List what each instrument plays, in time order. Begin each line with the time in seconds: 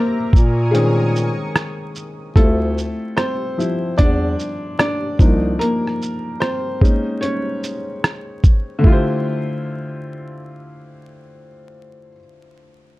Already playing: upright piano D#3 F3 A#3 C4 D4 A#4 C5 D5, analog synth pad A#4 E5 A#5 D6
0.20 bass clarinet A#2
0.33 bass clarinet A#2, analog synth pad A#4 G#5 C#6 D#6, kick, shaker
0.71 upright piano D#3 G#3 C4 C#4 G#4, closed hi-hat
1.16 shaker
1.56 cross-stick, closed hi-hat
1.96 shaker
2.36 bass clarinet D2, upright piano G3 A3 C4 E4 F4 A4, kick, closed hi-hat
2.78 shaker
3.17 upright piano C4 C5, cross-stick, closed hi-hat
3.58 upright piano F3 G3 C4 E4, shaker
3.98 bass clarinet E2, upright piano D4 D5, kick, closed hi-hat
4.39 shaker
4.79 upright piano D4 D5, cross-stick, closed hi-hat
5.19 bass clarinet C2, upright piano F3 A#3 D4 D#4, kick, shaker
5.59 upright piano A#3 A#4, closed hi-hat
5.87 cross-stick
6.02 shaker
6.40 upright piano C4 C5, cross-stick, closed hi-hat
6.81 upright piano G#3 A#3 C#4 D#4, kick, shaker
7.21 upright piano C#4 C#5, closed hi-hat
7.64 closed hi-hat, shaker
8.04 cross-stick, closed hi-hat
8.44 kick, shaker
8.79 upright piano D3 A3
8.84 upright piano E4 F4, kick
8.89 upright piano G4 C5